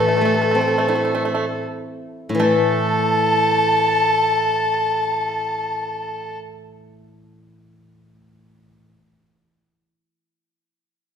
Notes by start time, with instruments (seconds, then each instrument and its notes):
Already playing: guzheng A2 E3 G3, fiddle A4, erhu A5
0.00 pipa A3
0.08 pipa A3
0.17 pipa A3
0.21 guzheng A3
0.25 pipa A3
0.35 pipa A3
0.42 pipa A3
0.51 pipa A3, guzheng C4
0.61 pipa A3
0.68 pipa A3
0.78 pipa A3
0.88 pipa A3, guzheng E4
0.95 pipa A3
1.05 pipa A3
1.15 pipa A3
1.25 pipa A3
1.35 pipa A3
2.29 guzheng A2
2.35 guzheng E3
2.39 guzheng A3, pipa A3, fiddle A4, erhu A5